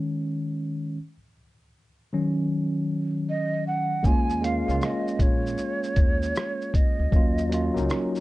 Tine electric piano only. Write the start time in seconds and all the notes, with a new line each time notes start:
Already playing: D#3 G#3 C#4
2.13 D#3 F#3 C#4
4.03 G#3 A#3 C#4
4.08 F4
4.41 G#3 A#3 C#4
4.46 F4
4.66 G#3 A#3 C#4
4.71 F4
7.11 F#3 A#3 C#4
7.16 F4
7.49 F#3 A#3 C#4
7.54 F4
7.74 F#3 A#3 C#4
7.79 D#4